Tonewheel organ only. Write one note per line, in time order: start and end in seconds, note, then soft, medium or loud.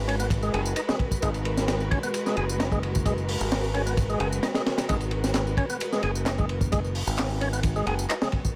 0.08 0.16 C#4 medium
0.20 0.27 B3 medium
0.43 0.53 G#3 medium
0.54 0.61 G#4 loud
0.76 0.81 D#4 medium
0.89 0.96 G#3 loud
1.22 1.30 G#3 loud
1.91 1.99 C#4 medium
2.03 2.10 B3 medium
2.26 2.36 G#3 medium
2.37 2.45 G#4 loud
2.60 2.64 D#4 medium
2.72 2.79 G#3 loud
3.06 3.13 G#3 loud
3.74 3.82 C#4 medium
3.86 3.93 B3 medium
4.09 4.19 G#3 medium
4.20 4.28 G#4 medium
4.43 4.48 D#4 medium
4.55 4.62 G#3 loud
4.89 4.97 G#3 loud
5.58 5.65 C#4 medium
5.70 5.77 B3 medium
5.93 6.02 G#3 medium
6.03 6.11 G#4 loud
6.26 6.31 D#4 medium
6.38 6.45 G#3 loud
6.72 6.80 G#3 loud
7.41 7.49 C#4 medium
7.53 7.60 B3 medium
7.76 7.86 G#3 medium
7.87 7.94 G#4 loud
8.09 8.14 D#4 medium
8.22 8.29 G#3 loud